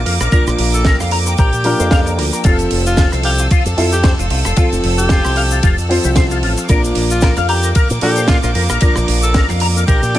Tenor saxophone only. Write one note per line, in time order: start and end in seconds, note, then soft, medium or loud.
0.74 0.93 A4 medium
1.39 2.14 G4 loud
2.86 3.06 F4 medium
3.25 3.46 G4 medium
3.92 4.12 G4 loud
4.98 5.72 G4 loud
7.11 7.31 F4 medium
7.49 7.70 G4 loud
8.02 8.26 G4 loud
8.28 8.38 F4 medium
8.43 8.51 F4 medium
9.23 9.43 A4 medium
9.88 10.19 G4 loud